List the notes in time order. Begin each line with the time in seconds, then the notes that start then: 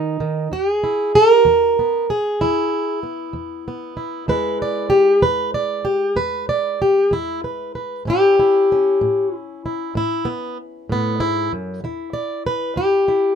Already playing: B2 D#3 D#4
0.20 D#3
0.52 E2 G4
0.73 G#4
0.84 E4
1.15 A#4
1.35 G4
1.45 E2 F#4
1.79 B3
2.10 G#4
2.41 E2 E4
3.03 B3
3.33 E2
3.68 B3
3.97 E4
4.28 E2 G#3 E4 B4
4.62 D5
4.90 G4
5.22 E2 B4
5.54 D5
5.85 G4
6.16 E2 B4
6.49 D5
6.82 G4
7.11 E2 E4
7.44 B4
7.75 B4
8.05 A2 C#4 E4
8.10 G4
8.39 E4
8.72 C#4
9.01 A2
9.37 E4
9.66 E4
9.95 A2 E4
10.25 B3
10.89 A2 B3
11.20 G#2 E4
11.53 F#2
11.84 E2 E4
12.13 D5
12.46 B4
12.76 E2 G4
13.08 E4